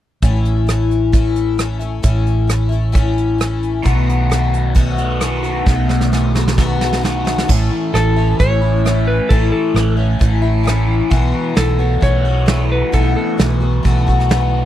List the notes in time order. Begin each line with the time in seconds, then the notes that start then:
0.22 A1 A2 E3 A3 C#4 E4, kick, closed hi-hat
0.45 closed hi-hat
0.67 E3 A3 C#4 E4, cross-stick, closed hi-hat
0.91 closed hi-hat
1.12 A2 E3 A3 C#4 E4, kick, closed hi-hat
1.36 closed hi-hat
1.58 E3 A3 C#4 E4, cross-stick, closed hi-hat
1.79 A3 C#4 E4, closed hi-hat
2.02 A1 A2 E3 A3 C#4 E4, kick, closed hi-hat
2.26 closed hi-hat
2.47 E3 A3 C#4 E4, cross-stick, closed hi-hat
2.69 A3 C#4 E4, closed hi-hat
2.92 A2 E3 A3 C#4 E4, kick, closed hi-hat
3.18 closed hi-hat
3.38 E3 A3 C#4 E4, cross-stick, closed hi-hat
3.63 closed hi-hat
3.83 B1 B2 D#3 A3 B3 F#4, kick, closed hi-hat
4.09 closed hi-hat
4.30 A3 B3 F#4, cross-stick, closed hi-hat
4.54 closed hi-hat
4.75 B2 A3 B3 F#4, kick, closed hi-hat
4.98 B2 D#3 A3 B3 F#4, closed hi-hat
5.19 B2 D#3 E3 A3 B3 F#4, cross-stick, closed hi-hat
5.43 A3 B3 F#4, closed hi-hat
5.66 B1 B2 D#3 A3 B3 F#4, kick, snare
5.89 snare
6.01 snare
6.12 E3 A3 B3 F#4, snare
6.35 A3 B3 F#4, snare
6.48 snare
6.57 B2 A3 B3 F#4, kick, snare
6.79 B2 D#3 A3 B3 F#4, snare
6.93 snare
7.01 B2 D#3 E3 A3 B3 F#4, snare
7.25 A3 B3 F#4, snare
7.38 snare
7.48 A1 A2 E3 A3 C#4 E4, kick, crash
7.71 E3
7.93 A1 E3 A3 C#4 E4 A4, cross-stick, closed hi-hat
8.16 A3 C#4 E4
8.39 A1 E3 A3 C#4 E4 C#5, kick, closed hi-hat
8.62 A3 C#4 E4
8.85 E3 A3 C#4 E4, cross-stick, closed hi-hat
9.07 E3 B4
9.29 A1 A2 E3 A3 C#4 E4 A4, kick, closed hi-hat
9.52 E3 A4
9.74 A1 E3 A3 C#4 E4, cross-stick, closed hi-hat
9.97 A3 C#4 E4
10.19 A1 E3 A3 C#4 E4, kick, closed hi-hat
10.42 A3 C#4 E4
10.63 E3 A3 C#4 E4, closed hi-hat
10.67 cross-stick
10.88 E3
11.10 B1 B2 E3 A3 B3 F#4, kick, closed hi-hat
11.34 E3
11.55 B1 E3 A3 B3 F#4 A4, snare, closed hi-hat
11.79 A3 B3 F#4
12.01 B1 E3 A3 B3 F#4 C#5, kick, closed hi-hat
12.25 A3 B3 F#4
12.46 E3 A3 B3 F#4, snare, closed hi-hat
12.71 E3 B4
12.92 B1 B2 E3 A3 B3 F#4 A4, kick, closed hi-hat
13.16 E3 A4
13.38 B1 E3 A3 B3 F#4, snare, closed hi-hat
13.60 A3 B3 F#4
13.83 B1 E3 A3 B3 F#4, kick, closed hi-hat
14.07 A3 B3 F#4, kick
14.20 snare
14.29 E3 A3 B3 F#4, snare, closed hi-hat
14.55 E3